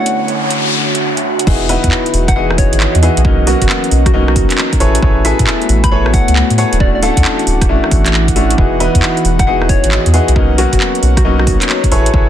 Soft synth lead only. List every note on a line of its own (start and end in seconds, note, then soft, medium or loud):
0.00 0.55 F#5 medium
2.28 2.33 F#5 medium
2.36 2.45 F#5 medium
2.58 2.95 C#5 medium
3.47 3.56 F#4 medium
3.62 3.67 F#4 medium
4.06 4.11 F#4 medium
4.14 4.23 F#4 medium
4.28 4.33 F#4 medium
5.84 5.89 B5 medium
5.91 6.01 B5 medium
6.14 6.50 F#5 loud
6.58 6.77 F#5 medium
6.80 6.90 D5 medium
6.95 7.00 D5 medium
7.03 7.66 F#5 loud
9.39 9.44 F#5 medium
9.47 9.56 F#5 medium
9.69 10.06 C#5 loud
10.58 10.68 F#4 medium
10.73 10.78 F#4 medium
11.17 11.22 F#4 medium
11.25 11.34 F#4 medium
11.40 11.44 F#4 medium
11.47 11.56 F#4 medium